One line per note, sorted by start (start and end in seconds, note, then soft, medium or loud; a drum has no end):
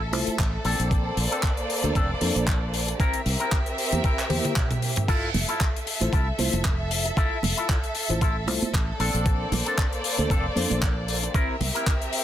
0.00 0.13 A1 medium
0.00 2.96 A4 medium
0.00 0.61 E5 medium
0.12 0.27 C2 medium
0.12 0.36 A3 medium
0.12 0.36 E4 medium
0.12 0.36 F4 medium
0.12 0.36 C5 medium
0.12 muted clean electric guitar stroke soft
0.12 open hi-hat loud
0.27 muted fingered electric bass stroke soft
0.27 closed hi-hat medium
0.39 0.56 A1 medium
0.39 kick loud
0.39 clap loud
0.39 closed hi-hat medium
0.65 0.74 A#1 medium
0.65 2.97 A#3 medium
0.65 1.17 C4 medium
0.65 1.17 D4 medium
0.65 1.17 A4 loud
0.65 2.97 C5 medium
0.65 2.97 D5 medium
0.65 open hi-hat medium
0.79 1.10 A#1 medium
0.79 closed hi-hat medium
0.91 kick loud
0.91 closed hi-hat medium
1.17 1.26 A#1 medium
1.17 open hi-hat loud
1.31 1.50 C4 medium
1.31 1.50 D4 medium
1.31 1.50 A4 medium
1.31 closed hi-hat medium
1.43 kick medium
1.43 clap loud
1.43 closed hi-hat medium
1.57 closed hi-hat soft
1.69 muted clean electric guitar stroke soft
1.69 open hi-hat loud
1.83 1.91 D2 medium
1.83 1.96 A#3 medium
1.83 1.97 D4 medium
1.83 1.97 A4 medium
1.83 1.97 C5 medium
1.83 closed hi-hat medium
1.95 2.12 F1 loud
1.95 2.10 C4 medium
1.95 2.10 D4 medium
1.95 2.10 A4 medium
1.95 kick loud
1.95 closed hi-hat medium
2.21 2.30 F2 medium
2.21 2.44 A#3 medium
2.21 2.44 D4 medium
2.21 2.45 A4 medium
2.21 2.45 C5 medium
2.21 muted clean electric guitar stroke soft
2.21 open hi-hat loud
2.36 2.92 A#1 medium
2.36 closed hi-hat medium
2.47 kick loud
2.47 clap loud
2.47 closed hi-hat medium
2.73 muted clean electric guitar stroke soft
2.73 open hi-hat loud
2.88 muted clean electric guitar stroke medium
2.88 closed hi-hat medium
2.99 3.20 C4 loud
2.99 5.06 C4 medium
2.99 3.20 E4 medium
2.99 5.06 G4 medium
2.99 5.06 A#4 medium
2.99 3.20 A#4 loud
2.99 5.06 E5 medium
2.99 kick loud
2.99 closed hi-hat medium
3.13 closed hi-hat medium
3.26 3.35 C2 loud
3.26 open hi-hat medium
3.40 3.59 C4 medium
3.40 3.59 E4 medium
3.40 3.59 A#4 medium
3.40 closed hi-hat medium
3.51 kick loud
3.51 clap loud
3.51 closed hi-hat medium
3.66 closed hi-hat medium
3.77 muted clean electric guitar stroke soft
3.77 open hi-hat loud
3.92 3.99 E2 medium
3.92 4.05 A#3 medium
3.92 4.05 E4 medium
3.92 4.06 G4 medium
3.92 4.06 C5 medium
3.92 closed hi-hat medium
4.04 4.18 C4 medium
4.04 4.19 E4 medium
4.04 4.19 A#4 medium
4.04 kick loud
4.04 closed hi-hat medium
4.19 clap soft
4.19 closed hi-hat medium
4.29 4.39 E2 medium
4.29 4.53 A#3 medium
4.29 4.53 E4 medium
4.29 4.53 G4 medium
4.29 4.53 C5 loud
4.29 muted clean electric guitar stroke soft
4.29 open hi-hat medium
4.29 high tom medium
4.45 closed hi-hat medium
4.45 high tom medium
4.56 kick loud
4.56 clap loud
4.56 closed hi-hat medium
4.56 mid tom medium
4.71 closed hi-hat medium
4.71 mid tom medium
4.82 muted clean electric guitar stroke soft
4.82 open hi-hat loud
4.96 muted clean electric guitar stroke medium
4.96 closed hi-hat medium
4.96 mid tom medium
5.08 5.29 E4 loud
5.08 5.29 F4 loud
5.08 11.30 A4 medium
5.08 5.29 A4 loud
5.08 8.96 E5 medium
5.08 kick loud
5.08 closed hi-hat medium
5.08 crash medium
5.34 5.43 F1 loud
5.34 open hi-hat loud
5.34 high conga medium
5.34 low conga medium
5.48 5.68 E4 medium
5.48 5.68 F4 medium
5.48 5.68 A4 medium
5.48 closed hi-hat medium
5.61 kick loud
5.61 clap loud
5.61 closed hi-hat medium
5.76 closed hi-hat medium
5.86 muted clean electric guitar stroke soft
5.86 open hi-hat loud
6.01 6.08 A1 medium
6.01 6.14 A3 medium
6.01 6.14 E4 medium
6.01 6.14 F4 medium
6.01 6.14 C5 medium
6.01 closed hi-hat medium
6.12 6.30 C2 loud
6.12 6.27 E4 medium
6.12 6.27 F4 medium
6.12 6.27 A4 medium
6.12 kick loud
6.12 closed hi-hat medium
6.38 6.48 C2 medium
6.38 6.62 A3 medium
6.38 6.62 E4 medium
6.38 6.62 F4 medium
6.38 6.62 C5 medium
6.38 muted clean electric guitar stroke soft
6.38 open hi-hat loud
6.38 high conga medium
6.53 7.10 F1 medium
6.53 closed hi-hat medium
6.53 high conga medium
6.53 low conga medium
6.64 kick loud
6.64 clap loud
6.64 closed hi-hat medium
6.91 muted clean electric guitar stroke soft
6.91 open hi-hat loud
7.05 muted clean electric guitar stroke medium
7.05 closed hi-hat medium
7.17 7.37 E4 loud
7.17 7.37 F4 loud
7.17 7.37 A4 loud
7.17 kick loud
7.17 closed hi-hat medium
7.43 7.52 F1 medium
7.43 open hi-hat loud
7.43 high conga medium
7.43 low conga loud
7.57 7.76 E4 medium
7.57 7.77 F4 medium
7.57 7.77 A4 medium
7.57 closed hi-hat medium
7.69 kick loud
7.69 clap loud
7.69 closed hi-hat medium
7.84 closed hi-hat soft
7.95 muted clean electric guitar stroke soft
7.95 open hi-hat loud
8.09 8.47 A1 medium
8.09 8.22 A3 medium
8.09 8.23 E4 medium
8.09 8.23 F4 medium
8.09 8.23 C5 medium
8.09 closed hi-hat medium
8.21 8.36 E4 medium
8.21 8.36 F4 medium
8.21 8.36 A4 medium
8.21 kick loud
8.21 closed hi-hat medium
8.47 8.61 C2 medium
8.47 8.70 A3 medium
8.47 8.71 E4 medium
8.47 8.71 F4 medium
8.47 8.71 C5 medium
8.47 muted clean electric guitar stroke soft
8.47 open hi-hat loud
8.47 high conga medium
8.62 muted fingered electric bass stroke soft
8.62 closed hi-hat medium
8.62 high conga medium
8.73 8.91 A1 medium
8.73 kick loud
8.73 clap loud
8.73 closed hi-hat medium
8.99 9.09 A#1 medium
8.99 11.32 A#3 medium
8.99 9.52 C4 medium
8.99 9.52 D4 medium
8.99 9.52 A4 loud
8.99 11.32 C5 medium
8.99 11.32 D5 medium
8.99 open hi-hat loud
9.14 9.45 A#1 medium
9.14 closed hi-hat medium
9.26 kick loud
9.26 closed hi-hat medium
9.52 9.61 A#1 loud
9.52 open hi-hat loud
9.52 high conga medium
9.52 low conga medium
9.66 9.85 C4 medium
9.66 9.85 D4 medium
9.66 9.85 A4 medium
9.66 closed hi-hat medium
9.78 kick loud
9.78 clap loud
9.78 closed hi-hat medium
9.93 closed hi-hat soft
10.04 muted clean electric guitar stroke soft
10.04 open hi-hat loud
10.18 10.26 D2 medium
10.18 10.31 A#3 medium
10.18 10.31 D4 medium
10.18 10.32 A4 medium
10.18 10.32 C5 medium
10.18 closed hi-hat medium
10.30 10.47 F1 loud
10.30 10.45 C4 medium
10.30 10.45 D4 medium
10.30 10.45 A4 medium
10.30 kick loud
10.30 closed hi-hat medium
10.56 10.65 F2 medium
10.56 10.79 A#3 medium
10.56 10.79 D4 medium
10.56 10.79 A4 medium
10.56 10.79 C5 medium
10.56 muted clean electric guitar stroke soft
10.56 open hi-hat loud
10.56 high conga medium
10.70 11.27 A#1 medium
10.70 closed hi-hat medium
10.70 high conga medium
10.70 low conga medium
10.82 kick loud
10.82 clap loud
10.82 closed hi-hat medium
11.08 muted clean electric guitar stroke soft
11.08 open hi-hat loud
11.23 muted clean electric guitar stroke medium
11.23 closed hi-hat medium
11.34 11.55 C4 loud
11.34 12.24 C4 medium
11.34 11.55 E4 loud
11.34 12.24 G4 medium
11.34 12.24 A#4 medium
11.34 11.55 A#4 loud
11.34 12.24 E5 medium
11.34 kick loud
11.34 closed hi-hat medium
11.60 11.69 C2 medium
11.60 open hi-hat medium
11.60 high conga medium
11.60 low conga loud
11.75 11.94 C4 medium
11.75 11.94 E4 medium
11.75 11.94 A#4 medium
11.75 closed hi-hat medium
11.87 kick loud
11.87 clap loud
11.87 closed hi-hat medium
12.02 closed hi-hat soft
12.12 muted clean electric guitar stroke soft
12.12 open hi-hat loud